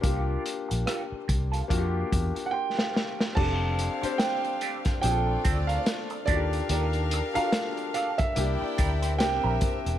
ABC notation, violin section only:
X:1
M:4/4
L:1/8
Q:"Swing 16ths" 1/4=72
K:Cmix
V:1 name="Violin section"
z8 | [K:F] [Dcf]4 [A,Fd]3 [DBf]- | [DBf]4 [Edg]2 [CBe]2 |]